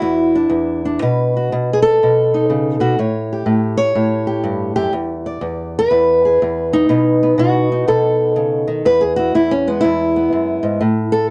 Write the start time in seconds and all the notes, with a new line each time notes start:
Already playing: E4 F#4
0.02 E2
0.35 D4
0.49 E2
0.85 D4
1.02 B2 B4
1.37 F#4
1.52 B2
1.73 G#4
1.82 A4
2.03 B2
2.34 D#4
2.50 C#3
2.80 B2 F#4
2.99 A2 C#5
3.33 G4
3.46 A2
3.77 C#5
3.95 A2
4.27 G4
4.44 G2
4.76 F#2 G4
4.93 E2
5.26 D5
5.41 E2
5.79 B4
5.91 E2
6.25 G#4
6.42 E2
6.73 D#4
6.89 B2 B3
7.23 B3
7.38 B2 F#4
7.72 D#4
7.88 B2 A4
8.36 C#3
8.68 D#3
8.85 E2 B4
9.01 G#4
9.16 E4 F#4
9.35 E2 E4
9.51 C#4
9.67 G#3 B3
9.81 E2 E4
10.16 B3
10.33 F#2
10.63 G#2
10.81 A2
11.12 A4